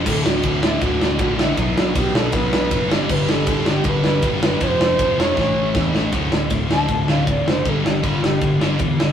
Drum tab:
CC |x-------|--------|x-------|--------|
RD |x-x-x-x-|x-x-x-x-|--x-x-x-|x-x-----|
SD |-o-o-o-o|-o-o-o-o|-o-o-o-o|-o-oo-oo|
BD |o-o-o-o-|o-o-o-o-|o-o-o-o-|o-o-o-o-|

CC |--------|--------|
RD |x-x-x-x-|x-x-x-x-|
SD |-o-o-o-o|-o-o-o-o|
BD |o-o-o-o-|o-o-o-o-|